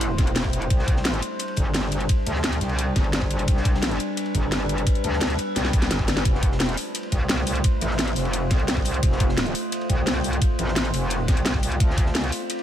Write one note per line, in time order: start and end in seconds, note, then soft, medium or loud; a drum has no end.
0.00 0.17 A1 loud
0.00 0.66 A3 medium
0.00 0.66 E4 medium
0.00 3.44 C5 medium
0.00 closed hi-hat medium
0.00 ride medium
0.18 0.69 E1 loud
0.18 kick loud
0.18 snare soft
0.18 closed hi-hat medium
0.18 ride medium
0.27 closed hi-hat soft
0.27 ride soft
0.36 snare loud
0.36 closed hi-hat medium
0.36 ride medium
0.44 kick medium
0.53 closed hi-hat medium
0.53 ride medium
0.62 closed hi-hat soft
0.62 ride soft
0.70 1.21 C2 loud
0.70 6.21 G3 medium
0.70 6.21 D4 medium
0.70 kick loud
0.70 closed hi-hat medium
0.70 ride medium
0.79 snare medium
0.88 kick loud
0.88 closed hi-hat medium
0.88 ride medium
0.96 snare medium
1.05 snare loud
1.05 closed hi-hat medium
1.05 ride medium
1.14 closed hi-hat soft
1.22 closed hi-hat medium
1.22 ride medium
1.39 closed hi-hat medium
1.39 ride loud
1.48 ride soft
1.56 2.08 G1 loud
1.56 kick medium
1.56 closed hi-hat medium
1.56 ride medium
1.74 snare loud
1.74 closed hi-hat medium
1.74 ride medium
1.92 closed hi-hat medium
1.92 ride medium
2.00 closed hi-hat soft
2.09 kick loud
2.09 closed hi-hat medium
2.09 ride medium
2.26 2.60 D2 loud
2.26 closed hi-hat medium
2.26 ride medium
2.35 snare soft
2.44 snare loud
2.44 closed hi-hat loud
2.44 ride medium
2.53 closed hi-hat soft
2.53 ride medium
2.61 2.95 C2 loud
2.61 snare soft
2.61 closed hi-hat medium
2.69 ride medium
2.79 closed hi-hat medium
2.79 ride medium
2.96 3.47 G1 loud
2.96 kick loud
2.96 snare soft
2.96 closed hi-hat medium
2.96 ride medium
3.04 ride soft
3.13 snare loud
3.13 closed hi-hat medium
3.13 ride medium
3.22 kick medium
3.31 closed hi-hat medium
3.31 ride medium
3.39 closed hi-hat soft
3.39 ride soft
3.48 3.99 C2 loud
3.48 6.23 B4 medium
3.48 kick loud
3.48 closed hi-hat medium
3.48 ride medium
3.57 snare soft
3.65 kick loud
3.65 closed hi-hat medium
3.65 ride medium
3.74 snare medium
3.83 snare loud
3.83 closed hi-hat medium
3.83 ride loud
3.91 closed hi-hat soft
4.00 closed hi-hat medium
4.00 ride medium
4.17 closed hi-hat medium
4.17 ride medium
4.26 ride soft
4.35 4.85 G1 loud
4.35 kick medium
4.35 closed hi-hat medium
4.35 ride medium
4.52 snare loud
4.52 closed hi-hat medium
4.52 ride medium
4.69 closed hi-hat medium
4.69 ride medium
4.78 closed hi-hat soft
4.86 kick loud
4.86 closed hi-hat medium
4.86 ride medium
4.95 closed hi-hat soft
5.04 5.37 D2 loud
5.04 closed hi-hat medium
5.04 ride medium
5.13 snare soft
5.21 snare loud
5.21 closed hi-hat loud
5.21 ride medium
5.30 closed hi-hat soft
5.39 closed hi-hat medium
5.39 ride medium
5.56 5.89 C2 medium
5.56 snare medium
5.56 closed hi-hat medium
5.56 ride medium
5.65 snare medium
5.73 kick loud
5.73 closed hi-hat medium
5.73 ride medium
5.82 snare medium
5.82 closed hi-hat soft
5.82 ride soft
5.91 6.24 G1 loud
5.91 snare loud
5.91 snare medium
5.91 closed hi-hat medium
5.91 ride medium
5.99 kick medium
6.08 snare medium
6.08 closed hi-hat medium
6.08 ride medium
6.16 snare medium
6.16 closed hi-hat soft
6.16 ride soft
6.25 6.76 F1 medium
6.25 11.76 A3 medium
6.25 12.63 F4 medium
6.25 11.76 C5 medium
6.25 kick loud
6.25 closed hi-hat loud
6.25 ride medium
6.35 snare soft
6.43 kick loud
6.43 closed hi-hat medium
6.43 ride medium
6.52 snare medium
6.60 snare loud
6.60 closed hi-hat loud
6.60 ride medium
6.69 closed hi-hat soft
6.77 open hi-hat medium
6.77 ride medium
6.95 closed hi-hat medium
6.95 ride loud
7.03 ride soft
7.12 7.63 C2 loud
7.12 kick medium
7.12 closed hi-hat medium
7.12 ride medium
7.29 snare loud
7.29 closed hi-hat medium
7.29 ride medium
7.47 open hi-hat medium
7.47 ride medium
7.55 closed hi-hat soft
7.64 kick loud
7.64 closed hi-hat loud
7.64 ride medium
7.81 8.15 A1 loud
7.81 closed hi-hat medium
7.81 ride medium
7.91 snare soft
7.99 snare loud
7.99 closed hi-hat loud
7.99 ride medium
8.07 closed hi-hat soft
8.07 ride medium
8.16 8.49 F1 loud
8.16 snare soft
8.16 open hi-hat medium
8.25 ride medium
8.33 closed hi-hat medium
8.33 ride medium
8.50 9.01 C2 loud
8.50 kick loud
8.50 snare soft
8.50 closed hi-hat medium
8.50 ride medium
8.59 ride soft
8.68 snare loud
8.68 closed hi-hat loud
8.68 ride medium
8.77 kick medium
8.85 open hi-hat medium
8.85 ride medium
8.94 closed hi-hat soft
8.94 ride soft
9.03 9.53 F1 medium
9.03 kick loud
9.03 closed hi-hat medium
9.03 ride medium
9.12 snare medium
9.20 kick loud
9.20 closed hi-hat medium
9.20 ride medium
9.29 snare medium
9.37 snare loud
9.37 closed hi-hat loud
9.37 ride medium
9.46 closed hi-hat soft
9.55 open hi-hat medium
9.72 closed hi-hat medium
9.72 ride medium
9.81 ride soft
9.90 10.40 C2 loud
9.90 kick medium
9.90 closed hi-hat medium
9.90 ride medium
10.06 snare loud
10.06 closed hi-hat loud
10.06 ride medium
10.24 open hi-hat medium
10.33 closed hi-hat soft
10.42 kick loud
10.42 closed hi-hat medium
10.42 ride medium
10.59 10.92 A1 loud
10.59 closed hi-hat medium
10.59 ride medium
10.68 snare soft
10.76 snare loud
10.76 closed hi-hat loud
10.76 ride medium
10.85 closed hi-hat soft
10.94 11.27 F1 loud
10.94 open hi-hat medium
10.94 ride medium
11.10 closed hi-hat medium
11.10 ride loud
11.28 11.79 C2 loud
11.28 kick loud
11.28 snare soft
11.28 closed hi-hat medium
11.28 ride medium
11.37 closed hi-hat soft
11.37 ride soft
11.45 snare loud
11.45 closed hi-hat medium
11.45 ride medium
11.54 kick medium
11.63 open hi-hat medium
11.63 ride medium
11.72 closed hi-hat soft
11.72 ride soft
11.80 12.31 D2 medium
11.80 12.63 C4 medium
11.80 12.63 D5 medium
11.80 kick loud
11.80 closed hi-hat medium
11.80 ride medium
11.90 snare soft
11.98 kick loud
11.98 closed hi-hat medium
11.98 ride medium
12.06 snare medium
12.15 snare loud
12.15 closed hi-hat medium
12.15 ride medium
12.24 closed hi-hat soft
12.32 open hi-hat medium
12.32 ride medium
12.50 closed hi-hat medium
12.50 ride loud
12.59 ride soft